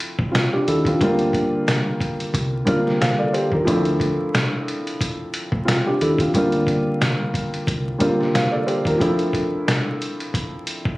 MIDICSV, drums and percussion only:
0, 0, Header, 1, 2, 480
1, 0, Start_track
1, 0, Key_signature, -1, "minor"
1, 0, Tempo, 666667
1, 724, Time_signature, 4, 2, 24, 8
1, 7903, End_track
2, 0, Start_track
2, 0, Title_t, "Drums"
2, 2, Note_on_c, 9, 42, 81
2, 74, Note_off_c, 9, 42, 0
2, 135, Note_on_c, 9, 36, 93
2, 207, Note_off_c, 9, 36, 0
2, 251, Note_on_c, 9, 40, 87
2, 253, Note_on_c, 9, 38, 117
2, 255, Note_on_c, 9, 42, 88
2, 323, Note_off_c, 9, 40, 0
2, 325, Note_off_c, 9, 38, 0
2, 327, Note_off_c, 9, 42, 0
2, 488, Note_on_c, 9, 42, 77
2, 560, Note_off_c, 9, 42, 0
2, 612, Note_on_c, 9, 36, 97
2, 623, Note_on_c, 9, 42, 62
2, 684, Note_off_c, 9, 36, 0
2, 695, Note_off_c, 9, 42, 0
2, 725, Note_on_c, 9, 36, 104
2, 728, Note_on_c, 9, 42, 96
2, 797, Note_off_c, 9, 36, 0
2, 800, Note_off_c, 9, 42, 0
2, 855, Note_on_c, 9, 42, 52
2, 927, Note_off_c, 9, 42, 0
2, 959, Note_on_c, 9, 36, 102
2, 968, Note_on_c, 9, 42, 75
2, 1031, Note_off_c, 9, 36, 0
2, 1040, Note_off_c, 9, 42, 0
2, 1209, Note_on_c, 9, 40, 98
2, 1210, Note_on_c, 9, 38, 122
2, 1210, Note_on_c, 9, 42, 109
2, 1281, Note_off_c, 9, 40, 0
2, 1282, Note_off_c, 9, 38, 0
2, 1282, Note_off_c, 9, 42, 0
2, 1444, Note_on_c, 9, 36, 94
2, 1450, Note_on_c, 9, 42, 64
2, 1516, Note_off_c, 9, 36, 0
2, 1522, Note_off_c, 9, 42, 0
2, 1586, Note_on_c, 9, 42, 52
2, 1658, Note_off_c, 9, 42, 0
2, 1684, Note_on_c, 9, 36, 97
2, 1689, Note_on_c, 9, 42, 91
2, 1756, Note_off_c, 9, 36, 0
2, 1761, Note_off_c, 9, 42, 0
2, 1921, Note_on_c, 9, 42, 84
2, 1923, Note_on_c, 9, 36, 90
2, 1993, Note_off_c, 9, 42, 0
2, 1995, Note_off_c, 9, 36, 0
2, 2067, Note_on_c, 9, 38, 37
2, 2139, Note_off_c, 9, 38, 0
2, 2171, Note_on_c, 9, 40, 90
2, 2172, Note_on_c, 9, 38, 111
2, 2174, Note_on_c, 9, 42, 90
2, 2243, Note_off_c, 9, 40, 0
2, 2244, Note_off_c, 9, 38, 0
2, 2246, Note_off_c, 9, 42, 0
2, 2407, Note_on_c, 9, 42, 76
2, 2479, Note_off_c, 9, 42, 0
2, 2532, Note_on_c, 9, 36, 96
2, 2604, Note_off_c, 9, 36, 0
2, 2645, Note_on_c, 9, 36, 103
2, 2647, Note_on_c, 9, 42, 94
2, 2717, Note_off_c, 9, 36, 0
2, 2719, Note_off_c, 9, 42, 0
2, 2774, Note_on_c, 9, 42, 52
2, 2846, Note_off_c, 9, 42, 0
2, 2879, Note_on_c, 9, 36, 97
2, 2888, Note_on_c, 9, 42, 77
2, 2951, Note_off_c, 9, 36, 0
2, 2960, Note_off_c, 9, 42, 0
2, 3129, Note_on_c, 9, 40, 94
2, 3130, Note_on_c, 9, 38, 118
2, 3131, Note_on_c, 9, 42, 111
2, 3201, Note_off_c, 9, 40, 0
2, 3202, Note_off_c, 9, 38, 0
2, 3203, Note_off_c, 9, 42, 0
2, 3372, Note_on_c, 9, 42, 67
2, 3444, Note_off_c, 9, 42, 0
2, 3507, Note_on_c, 9, 42, 55
2, 3579, Note_off_c, 9, 42, 0
2, 3604, Note_on_c, 9, 36, 97
2, 3610, Note_on_c, 9, 42, 91
2, 3676, Note_off_c, 9, 36, 0
2, 3682, Note_off_c, 9, 42, 0
2, 3842, Note_on_c, 9, 42, 83
2, 3914, Note_off_c, 9, 42, 0
2, 3975, Note_on_c, 9, 36, 97
2, 4047, Note_off_c, 9, 36, 0
2, 4092, Note_on_c, 9, 40, 90
2, 4093, Note_on_c, 9, 38, 114
2, 4095, Note_on_c, 9, 42, 88
2, 4164, Note_off_c, 9, 40, 0
2, 4165, Note_off_c, 9, 38, 0
2, 4167, Note_off_c, 9, 42, 0
2, 4329, Note_on_c, 9, 42, 79
2, 4401, Note_off_c, 9, 42, 0
2, 4453, Note_on_c, 9, 36, 94
2, 4464, Note_on_c, 9, 42, 63
2, 4525, Note_off_c, 9, 36, 0
2, 4536, Note_off_c, 9, 42, 0
2, 4566, Note_on_c, 9, 36, 104
2, 4569, Note_on_c, 9, 42, 94
2, 4638, Note_off_c, 9, 36, 0
2, 4641, Note_off_c, 9, 42, 0
2, 4696, Note_on_c, 9, 42, 53
2, 4768, Note_off_c, 9, 42, 0
2, 4800, Note_on_c, 9, 36, 100
2, 4810, Note_on_c, 9, 42, 78
2, 4872, Note_off_c, 9, 36, 0
2, 4882, Note_off_c, 9, 42, 0
2, 5051, Note_on_c, 9, 40, 98
2, 5052, Note_on_c, 9, 38, 121
2, 5052, Note_on_c, 9, 42, 107
2, 5123, Note_off_c, 9, 40, 0
2, 5124, Note_off_c, 9, 38, 0
2, 5124, Note_off_c, 9, 42, 0
2, 5285, Note_on_c, 9, 36, 94
2, 5293, Note_on_c, 9, 42, 68
2, 5357, Note_off_c, 9, 36, 0
2, 5365, Note_off_c, 9, 42, 0
2, 5427, Note_on_c, 9, 42, 53
2, 5499, Note_off_c, 9, 42, 0
2, 5525, Note_on_c, 9, 36, 95
2, 5531, Note_on_c, 9, 42, 93
2, 5597, Note_off_c, 9, 36, 0
2, 5603, Note_off_c, 9, 42, 0
2, 5763, Note_on_c, 9, 36, 89
2, 5763, Note_on_c, 9, 42, 84
2, 5835, Note_off_c, 9, 36, 0
2, 5835, Note_off_c, 9, 42, 0
2, 5908, Note_on_c, 9, 38, 35
2, 5980, Note_off_c, 9, 38, 0
2, 6012, Note_on_c, 9, 40, 90
2, 6013, Note_on_c, 9, 38, 116
2, 6015, Note_on_c, 9, 42, 92
2, 6084, Note_off_c, 9, 40, 0
2, 6085, Note_off_c, 9, 38, 0
2, 6087, Note_off_c, 9, 42, 0
2, 6250, Note_on_c, 9, 42, 74
2, 6322, Note_off_c, 9, 42, 0
2, 6373, Note_on_c, 9, 36, 98
2, 6384, Note_on_c, 9, 42, 62
2, 6445, Note_off_c, 9, 36, 0
2, 6456, Note_off_c, 9, 42, 0
2, 6485, Note_on_c, 9, 36, 107
2, 6490, Note_on_c, 9, 42, 95
2, 6557, Note_off_c, 9, 36, 0
2, 6562, Note_off_c, 9, 42, 0
2, 6616, Note_on_c, 9, 42, 53
2, 6688, Note_off_c, 9, 42, 0
2, 6720, Note_on_c, 9, 36, 101
2, 6730, Note_on_c, 9, 42, 78
2, 6792, Note_off_c, 9, 36, 0
2, 6802, Note_off_c, 9, 42, 0
2, 6971, Note_on_c, 9, 40, 98
2, 6972, Note_on_c, 9, 38, 118
2, 6972, Note_on_c, 9, 42, 110
2, 7043, Note_off_c, 9, 40, 0
2, 7044, Note_off_c, 9, 38, 0
2, 7044, Note_off_c, 9, 42, 0
2, 7212, Note_on_c, 9, 42, 66
2, 7284, Note_off_c, 9, 42, 0
2, 7347, Note_on_c, 9, 42, 52
2, 7419, Note_off_c, 9, 42, 0
2, 7444, Note_on_c, 9, 36, 100
2, 7450, Note_on_c, 9, 42, 93
2, 7516, Note_off_c, 9, 36, 0
2, 7522, Note_off_c, 9, 42, 0
2, 7682, Note_on_c, 9, 42, 84
2, 7754, Note_off_c, 9, 42, 0
2, 7815, Note_on_c, 9, 36, 96
2, 7887, Note_off_c, 9, 36, 0
2, 7903, End_track
0, 0, End_of_file